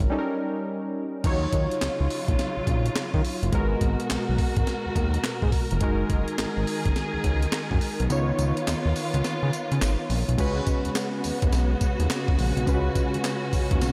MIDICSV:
0, 0, Header, 1, 5, 480
1, 0, Start_track
1, 0, Tempo, 571429
1, 1042, Time_signature, 4, 2, 24, 8
1, 11693, End_track
2, 0, Start_track
2, 0, Title_t, "Synth keys"
2, 0, Program_c, 0, 88
2, 0, Control_c, 0, 64, 127
2, 0, Note_on_c, 0, 54, 71
2, 0, Note_on_c, 0, 61, 64
2, 0, Note_on_c, 0, 65, 62
2, 0, Note_on_c, 0, 70, 85
2, 83, Note_on_c, 0, 55, 74
2, 88, Note_off_c, 0, 61, 0
2, 88, Note_on_c, 0, 61, 66
2, 93, Control_c, 0, 64, 0
2, 95, Note_off_c, 0, 65, 0
2, 96, Note_off_c, 0, 54, 0
2, 97, Note_off_c, 0, 70, 0
2, 97, Note_on_c, 0, 63, 64
2, 102, Note_on_c, 0, 69, 66
2, 156, Note_on_c, 0, 70, 80
2, 162, Note_off_c, 0, 69, 0
2, 222, Control_c, 0, 64, 127
2, 1024, Note_off_c, 0, 55, 0
2, 1026, Note_off_c, 0, 61, 0
2, 1031, Note_off_c, 0, 63, 0
2, 1044, Note_on_c, 0, 53, 56
2, 1053, Control_c, 0, 64, 0
2, 1053, Note_on_c, 0, 63, 67
2, 1059, Note_on_c, 0, 65, 62
2, 1061, Note_off_c, 0, 70, 0
2, 1065, Note_on_c, 0, 73, 82
2, 1099, Note_on_c, 0, 54, 72
2, 1113, Note_off_c, 0, 53, 0
2, 1187, Control_c, 0, 64, 127
2, 2934, Note_off_c, 0, 63, 0
2, 2937, Note_off_c, 0, 65, 0
2, 2940, Note_off_c, 0, 73, 0
2, 2957, Note_off_c, 0, 54, 0
2, 2959, Note_on_c, 0, 56, 77
2, 2966, Note_on_c, 0, 59, 69
2, 2972, Note_on_c, 0, 66, 64
2, 2973, Control_c, 0, 64, 0
2, 2980, Note_on_c, 0, 70, 84
2, 3136, Control_c, 0, 64, 127
2, 4847, Note_off_c, 0, 56, 0
2, 4851, Note_off_c, 0, 59, 0
2, 4854, Note_off_c, 0, 66, 0
2, 4858, Note_off_c, 0, 70, 0
2, 4881, Note_on_c, 0, 56, 80
2, 4891, Note_on_c, 0, 63, 67
2, 4893, Control_c, 0, 64, 0
2, 4894, Note_on_c, 0, 66, 72
2, 4902, Note_on_c, 0, 70, 82
2, 5035, Control_c, 0, 64, 127
2, 6768, Note_off_c, 0, 56, 0
2, 6773, Note_off_c, 0, 63, 0
2, 6775, Note_off_c, 0, 66, 0
2, 6779, Note_off_c, 0, 70, 0
2, 6802, Note_on_c, 0, 59, 72
2, 6809, Note_on_c, 0, 63, 63
2, 6813, Control_c, 0, 64, 0
2, 6816, Note_on_c, 0, 65, 67
2, 6822, Note_on_c, 0, 73, 84
2, 6964, Control_c, 0, 64, 127
2, 8689, Note_off_c, 0, 59, 0
2, 8692, Note_off_c, 0, 63, 0
2, 8696, Note_off_c, 0, 65, 0
2, 8699, Note_off_c, 0, 73, 0
2, 8717, Note_on_c, 0, 56, 75
2, 8725, Note_on_c, 0, 61, 67
2, 8732, Note_on_c, 0, 66, 67
2, 8733, Control_c, 0, 64, 0
2, 8738, Note_on_c, 0, 71, 83
2, 8908, Control_c, 0, 64, 127
2, 10606, Note_off_c, 0, 56, 0
2, 10610, Note_off_c, 0, 61, 0
2, 10613, Note_off_c, 0, 66, 0
2, 10617, Note_off_c, 0, 71, 0
2, 10637, Note_on_c, 0, 56, 69
2, 10643, Note_on_c, 0, 61, 67
2, 10651, Note_on_c, 0, 65, 54
2, 10657, Note_on_c, 0, 71, 80
2, 10705, Note_on_c, 0, 66, 70
2, 10717, Note_off_c, 0, 65, 0
2, 11693, Note_off_c, 0, 56, 0
2, 11693, Note_off_c, 0, 61, 0
2, 11693, Note_off_c, 0, 66, 0
2, 11693, Note_off_c, 0, 71, 0
2, 11693, End_track
3, 0, Start_track
3, 0, Title_t, "String section"
3, 0, Program_c, 1, 48
3, 1046, Note_on_c, 1, 49, 71
3, 1046, Note_on_c, 1, 54, 69
3, 1047, Note_on_c, 1, 65, 84
3, 2945, Note_off_c, 1, 49, 0
3, 2945, Note_off_c, 1, 54, 0
3, 2945, Note_off_c, 1, 65, 0
3, 2960, Note_on_c, 1, 66, 86
3, 2963, Note_on_c, 1, 47, 77
3, 2963, Note_on_c, 1, 70, 67
3, 4862, Note_off_c, 1, 66, 0
3, 4864, Note_off_c, 1, 47, 0
3, 4875, Note_on_c, 1, 51, 77
3, 4878, Note_on_c, 1, 68, 80
3, 6769, Note_off_c, 1, 70, 0
3, 6781, Note_off_c, 1, 68, 0
3, 6798, Note_on_c, 1, 65, 87
3, 6800, Note_on_c, 1, 59, 70
3, 8685, Note_off_c, 1, 51, 0
3, 8701, Note_off_c, 1, 65, 0
3, 8702, Note_off_c, 1, 59, 0
3, 8733, Note_on_c, 1, 59, 74
3, 8733, Note_on_c, 1, 66, 91
3, 8734, Note_on_c, 1, 49, 79
3, 10629, Note_off_c, 1, 59, 0
3, 10642, Note_on_c, 1, 61, 75
3, 11693, Note_off_c, 1, 49, 0
3, 11693, Note_off_c, 1, 61, 0
3, 11693, Note_off_c, 1, 66, 0
3, 11693, End_track
4, 0, Start_track
4, 0, Title_t, "Analog synth bass"
4, 0, Program_c, 2, 38
4, 1046, Note_on_c, 2, 39, 108
4, 1234, Note_off_c, 2, 39, 0
4, 1284, Note_on_c, 2, 39, 104
4, 1405, Note_off_c, 2, 39, 0
4, 1528, Note_on_c, 2, 37, 49
4, 1589, Note_off_c, 2, 37, 0
4, 1682, Note_on_c, 2, 37, 86
4, 1748, Note_off_c, 2, 37, 0
4, 1919, Note_on_c, 2, 34, 84
4, 1986, Note_off_c, 2, 34, 0
4, 2157, Note_on_c, 2, 34, 53
4, 2191, Note_off_c, 2, 34, 0
4, 2245, Note_on_c, 2, 34, 88
4, 2433, Note_off_c, 2, 34, 0
4, 2638, Note_on_c, 2, 51, 102
4, 2705, Note_off_c, 2, 51, 0
4, 2877, Note_on_c, 2, 30, 100
4, 2945, Note_off_c, 2, 30, 0
4, 2963, Note_on_c, 2, 32, 108
4, 3152, Note_off_c, 2, 32, 0
4, 3203, Note_on_c, 2, 32, 102
4, 3324, Note_off_c, 2, 32, 0
4, 3450, Note_on_c, 2, 35, 49
4, 3510, Note_off_c, 2, 35, 0
4, 3604, Note_on_c, 2, 35, 91
4, 3669, Note_off_c, 2, 35, 0
4, 3839, Note_on_c, 2, 32, 80
4, 3906, Note_off_c, 2, 32, 0
4, 4083, Note_on_c, 2, 39, 51
4, 4116, Note_off_c, 2, 39, 0
4, 4165, Note_on_c, 2, 39, 94
4, 4353, Note_off_c, 2, 39, 0
4, 4558, Note_on_c, 2, 44, 99
4, 4625, Note_off_c, 2, 44, 0
4, 4805, Note_on_c, 2, 29, 98
4, 4869, Note_off_c, 2, 29, 0
4, 5121, Note_on_c, 2, 30, 92
4, 5243, Note_off_c, 2, 30, 0
4, 5365, Note_on_c, 2, 32, 49
4, 5426, Note_off_c, 2, 32, 0
4, 5519, Note_on_c, 2, 32, 84
4, 5586, Note_off_c, 2, 32, 0
4, 5761, Note_on_c, 2, 30, 89
4, 5827, Note_off_c, 2, 30, 0
4, 5995, Note_on_c, 2, 37, 50
4, 6030, Note_off_c, 2, 37, 0
4, 6083, Note_on_c, 2, 37, 95
4, 6272, Note_off_c, 2, 37, 0
4, 6478, Note_on_c, 2, 42, 96
4, 6545, Note_off_c, 2, 42, 0
4, 6719, Note_on_c, 2, 35, 93
4, 6786, Note_off_c, 2, 35, 0
4, 6804, Note_on_c, 2, 37, 99
4, 6992, Note_off_c, 2, 37, 0
4, 7044, Note_on_c, 2, 37, 100
4, 7164, Note_off_c, 2, 37, 0
4, 7289, Note_on_c, 2, 39, 49
4, 7349, Note_off_c, 2, 39, 0
4, 7438, Note_on_c, 2, 39, 86
4, 7505, Note_off_c, 2, 39, 0
4, 7678, Note_on_c, 2, 37, 99
4, 7745, Note_off_c, 2, 37, 0
4, 7919, Note_on_c, 2, 49, 97
4, 7986, Note_off_c, 2, 49, 0
4, 8163, Note_on_c, 2, 49, 102
4, 8228, Note_off_c, 2, 49, 0
4, 8247, Note_on_c, 2, 32, 104
4, 8367, Note_off_c, 2, 32, 0
4, 8482, Note_on_c, 2, 34, 94
4, 8603, Note_off_c, 2, 34, 0
4, 8638, Note_on_c, 2, 35, 91
4, 8705, Note_off_c, 2, 35, 0
4, 8724, Note_on_c, 2, 37, 118
4, 8912, Note_off_c, 2, 37, 0
4, 9120, Note_on_c, 2, 39, 49
4, 9153, Note_off_c, 2, 39, 0
4, 9450, Note_on_c, 2, 39, 53
4, 9510, Note_off_c, 2, 39, 0
4, 9598, Note_on_c, 2, 39, 85
4, 9665, Note_off_c, 2, 39, 0
4, 9684, Note_on_c, 2, 35, 106
4, 9873, Note_off_c, 2, 35, 0
4, 10076, Note_on_c, 2, 39, 92
4, 10144, Note_off_c, 2, 39, 0
4, 10320, Note_on_c, 2, 37, 93
4, 10387, Note_off_c, 2, 37, 0
4, 10400, Note_on_c, 2, 34, 96
4, 10522, Note_off_c, 2, 34, 0
4, 10554, Note_on_c, 2, 35, 94
4, 10623, Note_off_c, 2, 35, 0
4, 10645, Note_on_c, 2, 37, 102
4, 10833, Note_off_c, 2, 37, 0
4, 11038, Note_on_c, 2, 39, 49
4, 11072, Note_off_c, 2, 39, 0
4, 11365, Note_on_c, 2, 39, 52
4, 11426, Note_off_c, 2, 39, 0
4, 11518, Note_on_c, 2, 39, 97
4, 11585, Note_off_c, 2, 39, 0
4, 11609, Note_on_c, 2, 35, 95
4, 11693, Note_off_c, 2, 35, 0
4, 11693, End_track
5, 0, Start_track
5, 0, Title_t, "Drums"
5, 1042, Note_on_c, 9, 42, 72
5, 1042, Note_on_c, 9, 49, 89
5, 1043, Note_on_c, 9, 36, 118
5, 1126, Note_off_c, 9, 42, 0
5, 1126, Note_off_c, 9, 49, 0
5, 1127, Note_off_c, 9, 36, 0
5, 1282, Note_on_c, 9, 36, 98
5, 1282, Note_on_c, 9, 42, 77
5, 1366, Note_off_c, 9, 36, 0
5, 1366, Note_off_c, 9, 42, 0
5, 1440, Note_on_c, 9, 42, 56
5, 1524, Note_off_c, 9, 42, 0
5, 1524, Note_on_c, 9, 38, 116
5, 1524, Note_on_c, 9, 42, 79
5, 1528, Note_on_c, 9, 39, 92
5, 1608, Note_off_c, 9, 38, 0
5, 1608, Note_off_c, 9, 42, 0
5, 1612, Note_off_c, 9, 39, 0
5, 1768, Note_on_c, 9, 46, 71
5, 1852, Note_off_c, 9, 46, 0
5, 1918, Note_on_c, 9, 36, 117
5, 1919, Note_on_c, 9, 42, 56
5, 2002, Note_off_c, 9, 36, 0
5, 2003, Note_off_c, 9, 42, 0
5, 2007, Note_on_c, 9, 42, 66
5, 2009, Note_on_c, 9, 38, 69
5, 2091, Note_off_c, 9, 42, 0
5, 2093, Note_off_c, 9, 38, 0
5, 2243, Note_on_c, 9, 36, 88
5, 2245, Note_on_c, 9, 42, 67
5, 2327, Note_off_c, 9, 36, 0
5, 2329, Note_off_c, 9, 42, 0
5, 2399, Note_on_c, 9, 42, 53
5, 2482, Note_on_c, 9, 38, 111
5, 2483, Note_off_c, 9, 42, 0
5, 2483, Note_on_c, 9, 42, 70
5, 2487, Note_on_c, 9, 39, 88
5, 2566, Note_off_c, 9, 38, 0
5, 2567, Note_off_c, 9, 42, 0
5, 2571, Note_off_c, 9, 39, 0
5, 2636, Note_on_c, 9, 36, 93
5, 2720, Note_off_c, 9, 36, 0
5, 2726, Note_on_c, 9, 46, 74
5, 2810, Note_off_c, 9, 46, 0
5, 2881, Note_on_c, 9, 42, 51
5, 2961, Note_off_c, 9, 42, 0
5, 2961, Note_on_c, 9, 42, 78
5, 2962, Note_on_c, 9, 36, 107
5, 3045, Note_off_c, 9, 42, 0
5, 3046, Note_off_c, 9, 36, 0
5, 3201, Note_on_c, 9, 36, 100
5, 3201, Note_on_c, 9, 42, 77
5, 3285, Note_off_c, 9, 36, 0
5, 3285, Note_off_c, 9, 42, 0
5, 3357, Note_on_c, 9, 42, 58
5, 3441, Note_off_c, 9, 42, 0
5, 3442, Note_on_c, 9, 38, 121
5, 3442, Note_on_c, 9, 42, 84
5, 3447, Note_on_c, 9, 39, 98
5, 3526, Note_off_c, 9, 38, 0
5, 3526, Note_off_c, 9, 42, 0
5, 3531, Note_off_c, 9, 39, 0
5, 3683, Note_on_c, 9, 36, 93
5, 3684, Note_on_c, 9, 46, 68
5, 3767, Note_off_c, 9, 36, 0
5, 3768, Note_off_c, 9, 46, 0
5, 3834, Note_on_c, 9, 42, 61
5, 3837, Note_on_c, 9, 36, 114
5, 3918, Note_off_c, 9, 42, 0
5, 3921, Note_off_c, 9, 36, 0
5, 3923, Note_on_c, 9, 42, 66
5, 3925, Note_on_c, 9, 38, 72
5, 4007, Note_off_c, 9, 42, 0
5, 4009, Note_off_c, 9, 38, 0
5, 4163, Note_on_c, 9, 36, 83
5, 4165, Note_on_c, 9, 42, 72
5, 4247, Note_off_c, 9, 36, 0
5, 4249, Note_off_c, 9, 42, 0
5, 4317, Note_on_c, 9, 42, 52
5, 4398, Note_on_c, 9, 38, 122
5, 4399, Note_off_c, 9, 42, 0
5, 4399, Note_on_c, 9, 42, 67
5, 4403, Note_on_c, 9, 39, 93
5, 4482, Note_off_c, 9, 38, 0
5, 4483, Note_off_c, 9, 42, 0
5, 4487, Note_off_c, 9, 39, 0
5, 4555, Note_on_c, 9, 36, 101
5, 4639, Note_off_c, 9, 36, 0
5, 4639, Note_on_c, 9, 36, 93
5, 4640, Note_on_c, 9, 46, 69
5, 4723, Note_off_c, 9, 36, 0
5, 4724, Note_off_c, 9, 46, 0
5, 4795, Note_on_c, 9, 42, 52
5, 4877, Note_off_c, 9, 42, 0
5, 4877, Note_on_c, 9, 42, 77
5, 4881, Note_on_c, 9, 36, 112
5, 4961, Note_off_c, 9, 42, 0
5, 4965, Note_off_c, 9, 36, 0
5, 5121, Note_on_c, 9, 42, 73
5, 5122, Note_on_c, 9, 36, 95
5, 5205, Note_off_c, 9, 42, 0
5, 5206, Note_off_c, 9, 36, 0
5, 5272, Note_on_c, 9, 42, 57
5, 5356, Note_off_c, 9, 42, 0
5, 5361, Note_on_c, 9, 38, 123
5, 5361, Note_on_c, 9, 42, 85
5, 5366, Note_on_c, 9, 39, 89
5, 5445, Note_off_c, 9, 38, 0
5, 5445, Note_off_c, 9, 42, 0
5, 5450, Note_off_c, 9, 39, 0
5, 5606, Note_on_c, 9, 46, 75
5, 5690, Note_off_c, 9, 46, 0
5, 5758, Note_on_c, 9, 36, 114
5, 5758, Note_on_c, 9, 42, 61
5, 5842, Note_off_c, 9, 36, 0
5, 5842, Note_off_c, 9, 42, 0
5, 5845, Note_on_c, 9, 42, 67
5, 5847, Note_on_c, 9, 38, 70
5, 5929, Note_off_c, 9, 42, 0
5, 5931, Note_off_c, 9, 38, 0
5, 6082, Note_on_c, 9, 42, 76
5, 6083, Note_on_c, 9, 36, 79
5, 6166, Note_off_c, 9, 42, 0
5, 6167, Note_off_c, 9, 36, 0
5, 6236, Note_on_c, 9, 42, 55
5, 6318, Note_off_c, 9, 42, 0
5, 6318, Note_on_c, 9, 38, 119
5, 6318, Note_on_c, 9, 42, 70
5, 6322, Note_on_c, 9, 39, 92
5, 6402, Note_off_c, 9, 38, 0
5, 6402, Note_off_c, 9, 42, 0
5, 6406, Note_off_c, 9, 39, 0
5, 6476, Note_on_c, 9, 36, 96
5, 6560, Note_off_c, 9, 36, 0
5, 6562, Note_on_c, 9, 46, 75
5, 6646, Note_off_c, 9, 46, 0
5, 6718, Note_on_c, 9, 42, 53
5, 6802, Note_off_c, 9, 42, 0
5, 6805, Note_on_c, 9, 42, 74
5, 6805, Note_on_c, 9, 54, 69
5, 6889, Note_off_c, 9, 42, 0
5, 6889, Note_off_c, 9, 54, 0
5, 7044, Note_on_c, 9, 42, 76
5, 7047, Note_on_c, 9, 54, 69
5, 7128, Note_off_c, 9, 42, 0
5, 7131, Note_off_c, 9, 54, 0
5, 7199, Note_on_c, 9, 42, 53
5, 7283, Note_off_c, 9, 42, 0
5, 7283, Note_on_c, 9, 54, 99
5, 7285, Note_on_c, 9, 38, 117
5, 7285, Note_on_c, 9, 42, 82
5, 7289, Note_on_c, 9, 39, 90
5, 7367, Note_off_c, 9, 54, 0
5, 7369, Note_off_c, 9, 38, 0
5, 7369, Note_off_c, 9, 42, 0
5, 7373, Note_off_c, 9, 39, 0
5, 7524, Note_on_c, 9, 54, 65
5, 7525, Note_on_c, 9, 46, 70
5, 7608, Note_off_c, 9, 54, 0
5, 7609, Note_off_c, 9, 46, 0
5, 7678, Note_on_c, 9, 42, 62
5, 7762, Note_off_c, 9, 42, 0
5, 7764, Note_on_c, 9, 42, 69
5, 7765, Note_on_c, 9, 54, 69
5, 7766, Note_on_c, 9, 38, 71
5, 7848, Note_off_c, 9, 42, 0
5, 7849, Note_off_c, 9, 54, 0
5, 7850, Note_off_c, 9, 38, 0
5, 8007, Note_on_c, 9, 42, 70
5, 8007, Note_on_c, 9, 54, 69
5, 8091, Note_off_c, 9, 42, 0
5, 8091, Note_off_c, 9, 54, 0
5, 8162, Note_on_c, 9, 42, 52
5, 8244, Note_off_c, 9, 42, 0
5, 8244, Note_on_c, 9, 38, 124
5, 8244, Note_on_c, 9, 42, 74
5, 8246, Note_on_c, 9, 54, 102
5, 8248, Note_on_c, 9, 39, 95
5, 8328, Note_off_c, 9, 38, 0
5, 8328, Note_off_c, 9, 42, 0
5, 8330, Note_off_c, 9, 54, 0
5, 8332, Note_off_c, 9, 39, 0
5, 8484, Note_on_c, 9, 46, 73
5, 8568, Note_off_c, 9, 46, 0
5, 8642, Note_on_c, 9, 42, 52
5, 8723, Note_off_c, 9, 42, 0
5, 8723, Note_on_c, 9, 36, 114
5, 8723, Note_on_c, 9, 42, 78
5, 8723, Note_on_c, 9, 49, 95
5, 8724, Note_on_c, 9, 54, 67
5, 8807, Note_off_c, 9, 36, 0
5, 8807, Note_off_c, 9, 42, 0
5, 8807, Note_off_c, 9, 49, 0
5, 8808, Note_off_c, 9, 54, 0
5, 8960, Note_on_c, 9, 42, 78
5, 8961, Note_on_c, 9, 36, 96
5, 8962, Note_on_c, 9, 54, 64
5, 9044, Note_off_c, 9, 42, 0
5, 9045, Note_off_c, 9, 36, 0
5, 9046, Note_off_c, 9, 54, 0
5, 9114, Note_on_c, 9, 42, 55
5, 9198, Note_off_c, 9, 42, 0
5, 9198, Note_on_c, 9, 54, 101
5, 9199, Note_on_c, 9, 38, 124
5, 9199, Note_on_c, 9, 42, 82
5, 9204, Note_on_c, 9, 39, 97
5, 9282, Note_off_c, 9, 54, 0
5, 9283, Note_off_c, 9, 38, 0
5, 9283, Note_off_c, 9, 42, 0
5, 9288, Note_off_c, 9, 39, 0
5, 9440, Note_on_c, 9, 54, 66
5, 9442, Note_on_c, 9, 46, 77
5, 9524, Note_off_c, 9, 54, 0
5, 9526, Note_off_c, 9, 46, 0
5, 9594, Note_on_c, 9, 42, 66
5, 9596, Note_on_c, 9, 36, 126
5, 9678, Note_off_c, 9, 42, 0
5, 9680, Note_off_c, 9, 36, 0
5, 9681, Note_on_c, 9, 42, 68
5, 9681, Note_on_c, 9, 54, 71
5, 9683, Note_on_c, 9, 38, 75
5, 9765, Note_off_c, 9, 42, 0
5, 9765, Note_off_c, 9, 54, 0
5, 9767, Note_off_c, 9, 38, 0
5, 9919, Note_on_c, 9, 42, 66
5, 9919, Note_on_c, 9, 54, 78
5, 9922, Note_on_c, 9, 36, 90
5, 10003, Note_off_c, 9, 42, 0
5, 10003, Note_off_c, 9, 54, 0
5, 10006, Note_off_c, 9, 36, 0
5, 10078, Note_on_c, 9, 42, 59
5, 10162, Note_off_c, 9, 42, 0
5, 10162, Note_on_c, 9, 38, 123
5, 10163, Note_on_c, 9, 42, 71
5, 10165, Note_on_c, 9, 54, 96
5, 10167, Note_on_c, 9, 39, 98
5, 10246, Note_off_c, 9, 38, 0
5, 10247, Note_off_c, 9, 42, 0
5, 10249, Note_off_c, 9, 54, 0
5, 10251, Note_off_c, 9, 39, 0
5, 10317, Note_on_c, 9, 36, 100
5, 10401, Note_off_c, 9, 36, 0
5, 10405, Note_on_c, 9, 46, 74
5, 10489, Note_off_c, 9, 46, 0
5, 10561, Note_on_c, 9, 42, 53
5, 10643, Note_on_c, 9, 36, 109
5, 10645, Note_off_c, 9, 42, 0
5, 10645, Note_on_c, 9, 42, 73
5, 10645, Note_on_c, 9, 54, 70
5, 10727, Note_off_c, 9, 36, 0
5, 10729, Note_off_c, 9, 42, 0
5, 10729, Note_off_c, 9, 54, 0
5, 10882, Note_on_c, 9, 36, 102
5, 10882, Note_on_c, 9, 42, 81
5, 10885, Note_on_c, 9, 54, 66
5, 10966, Note_off_c, 9, 36, 0
5, 10966, Note_off_c, 9, 42, 0
5, 10969, Note_off_c, 9, 54, 0
5, 11039, Note_on_c, 9, 42, 59
5, 11120, Note_on_c, 9, 54, 100
5, 11121, Note_off_c, 9, 42, 0
5, 11121, Note_on_c, 9, 38, 124
5, 11121, Note_on_c, 9, 42, 78
5, 11126, Note_on_c, 9, 39, 92
5, 11204, Note_off_c, 9, 54, 0
5, 11205, Note_off_c, 9, 38, 0
5, 11205, Note_off_c, 9, 42, 0
5, 11210, Note_off_c, 9, 39, 0
5, 11363, Note_on_c, 9, 54, 70
5, 11364, Note_on_c, 9, 36, 100
5, 11365, Note_on_c, 9, 46, 71
5, 11447, Note_off_c, 9, 54, 0
5, 11448, Note_off_c, 9, 36, 0
5, 11449, Note_off_c, 9, 46, 0
5, 11516, Note_on_c, 9, 42, 60
5, 11517, Note_on_c, 9, 36, 119
5, 11600, Note_off_c, 9, 42, 0
5, 11601, Note_off_c, 9, 36, 0
5, 11604, Note_on_c, 9, 42, 67
5, 11604, Note_on_c, 9, 54, 71
5, 11606, Note_on_c, 9, 38, 76
5, 11688, Note_off_c, 9, 42, 0
5, 11688, Note_off_c, 9, 54, 0
5, 11690, Note_off_c, 9, 38, 0
5, 11693, End_track
0, 0, End_of_file